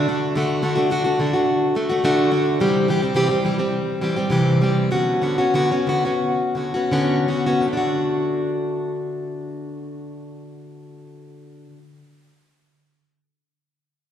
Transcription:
0.08 0.34 D3 soft
0.08 0.36 A3 soft
0.08 0.36 D4 medium
0.08 0.36 F#4 soft
0.36 0.61 D3 medium
0.36 0.62 A3 medium
0.36 0.62 D4 medium
0.36 0.64 F#4 medium
0.62 0.77 D3 medium
0.62 0.76 A3 medium
0.62 0.76 D4 medium
0.62 0.74 F#4 medium
0.75 0.90 A3 soft
0.75 0.90 D4 soft
0.75 0.90 F#4 soft
0.90 1.04 D3 medium
0.90 1.05 A3 medium
0.90 1.04 D4 medium
0.90 1.03 F#4 medium
1.04 1.19 A3 soft
1.04 1.19 D4 soft
1.04 1.19 F#4 soft
1.19 1.33 D3 medium
1.19 1.33 A3 soft
1.19 1.34 D4 soft
1.19 1.32 F#4 soft
1.33 1.75 A3 soft
1.33 1.76 D4 soft
1.33 1.75 F#4 soft
1.75 1.89 D3 soft
1.75 1.90 A3 medium
1.75 1.89 D4 medium
1.75 1.88 F#4 medium
1.89 2.03 A3 soft
1.89 2.04 D4 soft
1.89 2.03 F#4 soft
2.04 2.30 D3 medium
2.04 2.30 A3 medium
2.04 2.31 D4 medium
2.04 2.32 F#4 medium
2.31 2.59 D3 medium
2.31 2.59 A3 soft
2.31 2.59 D4 soft
2.31 2.60 F#4 medium
2.60 2.88 C3 medium
2.60 2.87 E3 medium
2.60 2.88 G3 medium
2.60 2.88 C4 medium
2.60 2.88 G4 medium
2.88 3.02 E3 medium
2.88 3.02 G3 soft
2.88 3.02 C4 medium
2.88 3.01 G4 medium
3.02 3.15 G3 soft
3.02 3.15 C4 soft
3.02 3.15 G4 soft
3.14 3.29 C3 medium
3.14 3.29 E3 medium
3.14 3.30 G3 medium
3.14 3.30 C4 medium
3.14 3.28 G4 medium
3.29 3.44 G3 soft
3.29 3.44 C4 soft
3.29 3.43 G4 soft
3.44 3.58 E3 soft
3.44 3.58 G3 soft
3.44 3.58 C4 soft
3.44 3.57 G4 soft
3.58 4.00 G3 soft
3.58 4.02 C4 soft
3.58 4.01 G4 soft
4.01 4.16 E3 soft
4.01 4.16 G3 soft
4.01 4.16 C4 soft
4.01 4.15 G4 soft
4.16 4.30 G3 soft
4.16 4.31 C4 soft
4.16 4.31 G4 soft
4.30 4.60 C3 medium
4.30 4.60 E3 medium
4.30 4.61 G3 medium
4.30 4.61 C4 medium
4.30 4.61 G4 medium
4.61 4.90 E3 soft
4.61 4.91 G3 soft
4.61 4.91 C4 soft
4.61 4.91 G4 medium
4.91 5.20 D3 medium
4.91 5.22 B3 medium
4.91 5.22 C#4 medium
4.91 5.22 F#4 medium
5.22 5.38 D3 soft
5.22 5.39 B3 soft
5.22 5.39 C#4 medium
5.22 5.37 F#4 medium
5.38 5.54 B3 soft
5.38 5.54 C#4 soft
5.38 5.54 F#4 soft
5.54 5.70 D3 medium
5.54 5.71 B3 medium
5.54 5.71 C#4 medium
5.54 5.70 F#4 medium
5.71 5.86 B3 soft
5.71 5.88 C#4 soft
5.71 5.87 F#4 soft
5.87 6.04 D3 soft
5.87 6.04 B3 soft
5.87 6.04 C#4 soft
5.87 6.04 F#4 soft
6.05 6.55 B3 soft
6.05 6.56 C#4 soft
6.05 6.56 F#4 soft
6.55 6.73 D3 soft
6.55 6.74 B3 soft
6.55 6.74 C#4 soft
6.55 6.73 F#4 soft
6.74 6.92 B3 soft
6.74 6.91 C#4 soft
6.74 6.92 F#4 soft
6.92 7.27 D3 medium
6.92 7.27 B3 medium
6.92 7.27 C#4 medium
6.92 7.29 F#4 medium
7.28 7.47 D3 soft
7.28 7.47 B3 soft
7.28 7.46 C#4 soft
7.28 7.45 F#4 soft
7.46 7.67 B3 soft
7.46 7.66 C#4 soft
7.46 7.66 F#4 soft
7.61 11.66 D3 soft
7.68 11.73 A3 soft
7.73 11.78 D4 soft
7.77 11.82 F#4 medium

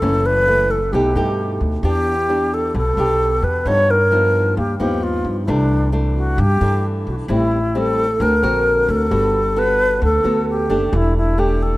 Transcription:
0.00 0.89 F#1 medium
0.00 0.91 F#2 soft
0.00 0.44 E3 soft
0.00 0.44 A3 medium
0.00 0.45 C#4 medium
0.00 0.27 A4 medium
0.26 0.72 B4 loud
0.47 0.78 E3 medium
0.47 0.78 A3 medium
0.47 0.78 C#4 medium
0.71 0.94 A4 medium
0.92 1.14 B1 medium
0.92 1.82 B2 medium
0.92 1.13 A3 medium
0.92 1.13 D#4 medium
0.92 1.61 G4 medium
0.92 1.13 G4 medium
1.15 1.58 G2 medium
1.15 1.80 A3 soft
1.15 1.80 D#4 medium
1.15 1.81 G4 medium
1.61 1.82 D2 medium
1.83 2.70 E2 medium
1.83 2.73 E3 medium
1.83 2.14 B3 medium
1.83 2.14 D4 medium
1.83 2.14 G4 medium
1.83 2.55 G4 loud
2.29 2.74 B3 soft
2.29 2.75 D4 medium
2.29 2.75 G4 medium
2.54 2.76 A4 medium
2.74 2.96 B1 medium
2.74 3.63 B2 medium
2.74 3.45 A4 loud
2.97 3.40 B1 medium
2.97 3.62 B3 medium
2.97 3.63 D4 medium
2.97 3.63 G4 medium
3.42 3.64 E2 medium
3.42 3.69 B4 medium
3.66 4.53 G2 medium
3.66 4.55 G2 medium
3.66 3.95 F3 soft
3.66 3.96 B3 medium
3.66 3.96 D#4 medium
3.66 3.92 C#5 loud
3.90 4.57 A#4 loud
4.11 4.56 F3 medium
4.11 4.57 B3 soft
4.11 4.57 D#4 medium
4.57 4.78 D#2 medium
4.57 5.45 G2 medium
4.57 4.79 G4 medium
4.80 5.22 D#2 medium
4.80 5.44 F3 medium
4.80 5.44 B3 medium
4.80 5.45 D#4 medium
4.80 5.05 G4 medium
5.03 5.37 F4 medium
5.24 5.46 G2 medium
5.44 6.35 C2 medium
5.44 6.36 C3 soft
5.44 5.89 E3 medium
5.44 5.90 A3 medium
5.44 5.51 E4 medium
5.49 5.90 D4 medium
5.92 6.38 E3 soft
5.92 6.38 A3 soft
5.92 6.38 D4 medium
6.16 6.41 F#4 medium
6.38 6.59 G2 loud
6.38 7.27 G2 medium
6.38 6.85 G4 loud
6.61 7.03 G2 medium
6.61 7.26 E3 medium
6.61 7.26 A3 medium
6.61 7.26 D4 medium
7.07 7.28 B1 medium
7.07 7.15 F#4 medium
7.28 8.16 A1 medium
7.28 8.18 A2 medium
7.28 7.58 G3 soft
7.28 7.59 C4 soft
7.28 7.59 E4 medium
7.28 7.79 E4 medium
7.75 8.05 G3 medium
7.75 8.06 C4 medium
7.75 8.06 E4 soft
7.75 8.24 A4 loud
8.20 8.41 D2 medium
8.20 9.09 D3 medium
8.20 8.34 C4 soft
8.20 8.34 F#4 soft
8.20 8.34 A#4 medium
8.20 8.92 A#4 medium
8.43 8.85 A#1 medium
8.43 9.07 C4 medium
8.43 9.07 F#4 medium
8.43 9.08 A#4 medium
8.89 9.09 D2 medium
8.89 9.60 A4 medium
9.11 9.98 G1 medium
9.11 9.99 G3 medium
9.11 9.40 B3 medium
9.11 9.40 F#4 soft
9.11 9.41 A4 medium
9.56 10.01 B3 medium
9.56 10.01 F#4 medium
9.56 10.02 A4 medium
9.56 10.03 B4 loud
10.02 10.23 D2 medium
10.02 10.90 D3 medium
10.02 10.45 A4 medium
10.24 10.66 D2 medium
10.24 10.66 B3 medium
10.24 10.66 F#4 medium
10.24 10.67 A4 medium
10.50 10.97 G4 medium
10.69 10.91 F#1 medium
10.69 11.34 A3 medium
10.69 11.34 D4 medium
10.69 11.34 G4 medium
10.93 11.77 E1 medium
10.93 11.77 E3 medium
10.93 11.17 E4 medium
11.17 11.41 E4 medium
11.37 11.77 A3 soft
11.37 11.77 D4 medium
11.37 11.77 G4 medium
11.37 11.64 G4 medium
11.63 11.77 A4 medium

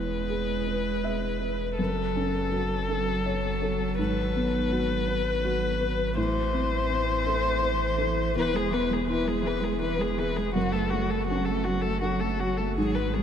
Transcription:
0.00 1.80 E1 medium
0.00 1.74 E2 medium
0.00 1.79 G#3 medium
0.00 0.52 E4 soft
0.00 1.75 B4 medium
0.30 0.90 G#4 soft
0.67 1.27 B4 soft
1.04 1.64 E5 soft
1.42 1.79 B4 soft
1.78 4.00 F#1 medium
1.78 3.95 F#2 medium
1.78 6.17 F#3 medium
1.78 3.94 A4 medium
2.15 2.74 C#4 soft
2.52 3.11 F#4 soft
2.89 3.47 A4 medium
3.26 3.84 C#5 medium
3.62 3.99 A4 medium
3.98 6.19 G#1 medium
3.98 6.13 G#2 medium
3.98 6.14 B4 medium
4.36 4.94 B3 medium
4.72 5.30 F#4 medium
5.08 5.67 B4 medium
5.45 6.03 F#4 medium
5.81 6.17 B4 medium
6.17 8.39 A1 medium
6.17 8.32 A2 medium
6.17 8.32 E3 medium
6.17 8.33 C5 medium
6.53 7.11 C4 medium
6.90 7.48 E4 medium
7.27 7.85 A4 medium
7.63 8.21 C5 medium
7.98 8.36 A4 medium
8.36 10.58 E1 medium
8.36 10.52 E2 medium
8.36 8.55 E3 medium
8.36 8.57 B4 medium
8.53 8.72 G#3 medium
8.53 8.74 G#4 medium
8.71 8.91 E3 medium
8.71 9.31 B3 medium
8.71 8.94 B4 medium
8.89 9.06 G#3 medium
8.89 9.09 G#4 medium
9.07 9.28 E3 medium
9.07 9.68 E4 medium
9.07 9.29 B4 medium
9.26 9.44 G#3 medium
9.26 9.48 G#4 medium
9.43 9.63 E3 medium
9.43 10.04 G#4 medium
9.43 9.65 B4 medium
9.61 9.79 G#3 medium
9.61 9.81 G#4 medium
9.80 10.00 E3 medium
9.80 10.02 B4 medium
9.80 10.41 B4 medium
9.98 10.19 G#3 medium
9.98 10.20 G#4 medium
10.17 10.39 E3 medium
10.17 10.56 G#4 medium
10.17 10.37 B4 medium
10.36 10.54 G#3 medium
10.36 10.53 G#4 medium
10.54 12.77 F#1 medium
10.54 12.73 F#2 medium
10.54 10.74 F#3 medium
10.54 10.74 F#4 medium
10.72 10.93 A3 medium
10.72 10.92 A4 medium
10.90 11.13 F#3 medium
10.90 11.51 A3 medium
10.90 11.11 F#4 medium
11.09 11.29 A3 medium
11.09 11.26 A4 medium
11.27 11.50 F#3 medium
11.27 11.88 C#4 medium
11.27 11.46 F#4 medium
11.45 11.65 A4 medium
11.49 11.68 A3 medium
11.64 11.88 F#3 medium
11.64 11.83 F#4 medium
11.64 12.24 F#4 medium
11.81 12.01 A4 medium
11.86 12.04 A3 medium
12.01 12.24 F#3 medium
12.01 12.21 F#4 medium
12.01 12.62 A4 medium
12.20 12.42 A3 medium
12.20 12.41 A4 medium
12.39 12.61 F#3 medium
12.39 12.59 F#4 medium
12.39 12.77 F#4 medium
12.57 12.77 A3 medium
12.57 12.76 A4 medium
12.76 13.23 G#1 medium
12.76 13.23 G#2 medium
12.76 12.96 G#4 medium
12.80 12.98 F#3 medium
12.95 13.17 G#3 medium
12.95 13.15 B4 medium
13.13 13.23 F#3 medium
13.13 13.23 G#3 medium
13.13 13.23 G#4 medium

